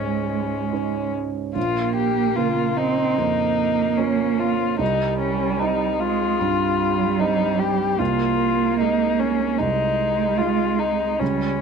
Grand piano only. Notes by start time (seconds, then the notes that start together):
Already playing: C#2 G#2 C#4 D#4 C#5
0.73 C#4 D#4 C#5
1.55 A#1
2.37 C#3 F4 A#4
3.18 F2
3.99 C#4 F4 C#5
4.79 C2
5.62 C4 D#4 D#5
6.40 G2
7.20 C4 D#4 D#5
7.99 C2
8.81 G#3 D#4 D#5
9.60 C2
10.39 G#3 D#4 D#5
11.20 C#2